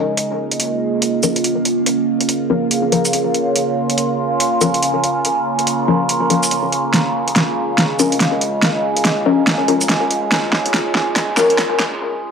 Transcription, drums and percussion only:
0.17 closed hi-hat medium
0.51 closed hi-hat medium
0.60 closed hi-hat medium
1.02 closed hi-hat medium
1.23 closed hi-hat medium
1.23 shaker medium
1.36 closed hi-hat medium
1.44 closed hi-hat medium
1.65 closed hi-hat medium
1.86 closed hi-hat medium
2.21 closed hi-hat medium
2.29 closed hi-hat medium
2.71 closed hi-hat medium
2.92 closed hi-hat medium
3.05 closed hi-hat medium
3.05 shaker medium
3.13 closed hi-hat medium
3.34 closed hi-hat medium
3.55 closed hi-hat medium
3.90 closed hi-hat medium
3.98 closed hi-hat medium
4.40 closed hi-hat medium
4.61 closed hi-hat medium
4.61 shaker medium
4.74 closed hi-hat medium
4.82 closed hi-hat medium
5.04 closed hi-hat medium
5.25 closed hi-hat medium
5.59 closed hi-hat soft
5.67 closed hi-hat medium
6.09 closed hi-hat medium
6.30 closed hi-hat soft
6.43 closed hi-hat medium
6.43 shaker medium
6.51 closed hi-hat medium
6.72 closed hi-hat medium
6.94 snare soft
6.94 closed hi-hat medium
7.28 closed hi-hat soft
7.36 snare medium
7.36 closed hi-hat medium
7.78 snare medium
7.78 closed hi-hat medium
7.99 closed hi-hat medium
7.99 shaker medium
8.12 closed hi-hat medium
8.20 snare medium
8.20 closed hi-hat medium
8.41 closed hi-hat soft
8.62 snare medium
8.62 closed hi-hat medium
8.97 closed hi-hat soft
9.05 snare medium
9.05 closed hi-hat medium
9.47 snare medium
9.47 closed hi-hat medium
9.68 closed hi-hat medium
9.81 closed hi-hat medium
9.81 shaker medium
9.89 snare medium
9.89 closed hi-hat medium
10.11 closed hi-hat soft
10.32 snare medium
10.32 closed hi-hat medium
10.53 snare medium
10.66 closed hi-hat medium
10.74 snare medium
10.74 closed hi-hat medium
10.95 snare medium
11.16 snare medium
11.16 closed hi-hat medium
11.37 snare medium
11.37 closed hi-hat medium
11.37 shaker medium
11.50 closed hi-hat medium
11.58 snare medium
11.58 closed hi-hat medium
11.80 snare medium
11.80 closed hi-hat medium

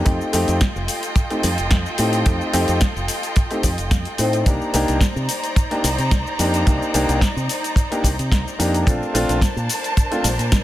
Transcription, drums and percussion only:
0.06 kick loud
0.06 closed hi-hat medium
0.06 shaker soft
0.21 shaker soft
0.33 open hi-hat loud
0.33 shaker medium
0.48 closed hi-hat medium
0.48 shaker soft
0.61 kick loud
0.61 snare loud
0.61 closed hi-hat medium
0.61 shaker soft
0.76 shaker soft
0.88 open hi-hat medium
0.88 shaker medium
1.03 closed hi-hat soft
1.03 shaker soft
1.16 kick loud
1.16 closed hi-hat medium
1.16 shaker soft
1.30 closed hi-hat soft
1.30 shaker soft
1.43 snare medium
1.43 open hi-hat loud
1.43 shaker medium
1.58 closed hi-hat soft
1.58 shaker soft
1.71 kick loud
1.71 snare loud
1.71 closed hi-hat medium
1.71 shaker soft
1.86 shaker soft
1.98 open hi-hat loud
1.98 shaker medium
2.13 closed hi-hat soft
2.13 shaker soft
2.26 kick loud
2.26 closed hi-hat medium
2.26 shaker soft
2.41 shaker soft
2.53 open hi-hat loud
2.53 shaker medium
2.68 closed hi-hat soft
2.68 shaker soft
2.81 kick loud
2.81 snare loud
2.81 closed hi-hat medium
2.81 shaker soft
2.97 shaker soft
3.08 open hi-hat medium
3.08 shaker medium
3.23 closed hi-hat soft
3.23 shaker soft
3.36 kick loud
3.36 closed hi-hat medium
3.36 shaker soft
3.51 closed hi-hat soft
3.51 shaker soft
3.63 kick medium
3.63 open hi-hat loud
3.63 shaker medium
3.78 closed hi-hat soft
3.78 shaker soft
3.91 kick loud
3.91 snare loud
3.91 closed hi-hat medium
3.91 shaker soft
4.05 closed hi-hat soft
4.05 shaker soft
4.18 open hi-hat medium
4.18 shaker medium
4.33 closed hi-hat soft
4.33 shaker soft
4.46 kick loud
4.46 closed hi-hat medium
4.46 shaker soft
4.61 shaker soft
4.74 open hi-hat loud
4.74 shaker medium
4.88 closed hi-hat soft
4.88 shaker soft
5.01 kick loud
5.01 snare loud
5.01 closed hi-hat medium
5.01 shaker soft
5.17 shaker soft
5.29 open hi-hat medium
5.29 shaker medium
5.44 closed hi-hat soft
5.44 shaker soft
5.56 kick loud
5.56 closed hi-hat medium
5.56 shaker soft
5.71 closed hi-hat soft
5.71 shaker soft
5.84 snare medium
5.84 open hi-hat loud
5.84 shaker medium
5.99 closed hi-hat soft
5.99 shaker soft
6.11 kick loud
6.11 snare loud
6.11 closed hi-hat medium
6.11 shaker soft
6.27 shaker soft
6.39 open hi-hat medium
6.39 shaker medium
6.54 closed hi-hat soft
6.54 shaker soft
6.67 kick loud
6.67 closed hi-hat medium
6.67 shaker soft
6.82 shaker soft
6.94 open hi-hat loud
6.94 shaker medium
7.09 closed hi-hat medium
7.09 shaker soft
7.21 kick loud
7.21 snare loud
7.21 closed hi-hat medium
7.21 shaker soft
7.37 shaker soft
7.49 open hi-hat medium
7.49 shaker medium
7.64 closed hi-hat soft
7.64 shaker soft
7.76 kick loud
7.76 closed hi-hat medium
7.76 shaker soft
7.92 closed hi-hat soft
7.92 shaker soft
8.04 kick medium
8.04 open hi-hat loud
8.04 shaker medium
8.19 closed hi-hat soft
8.19 shaker soft
8.32 kick loud
8.32 snare loud
8.32 closed hi-hat medium
8.32 shaker soft
8.48 shaker soft
8.60 open hi-hat medium
8.60 shaker medium
8.74 closed hi-hat soft
8.74 shaker soft
8.87 kick loud
8.87 closed hi-hat medium
8.87 shaker soft
9.03 shaker soft
9.15 open hi-hat loud
9.15 shaker medium
9.29 closed hi-hat medium
9.29 shaker soft
9.41 kick loud
9.41 snare loud
9.41 closed hi-hat medium
9.41 shaker soft
9.57 shaker soft
9.69 open hi-hat medium
9.69 shaker medium
9.84 closed hi-hat soft
9.84 shaker soft
9.97 kick loud
9.97 closed hi-hat medium
9.97 shaker soft
10.12 closed hi-hat soft
10.12 shaker soft
10.24 snare medium
10.24 open hi-hat medium
10.24 shaker medium
10.39 closed hi-hat medium
10.39 shaker soft
10.52 kick loud
10.52 snare loud
10.52 closed hi-hat medium
10.52 shaker soft

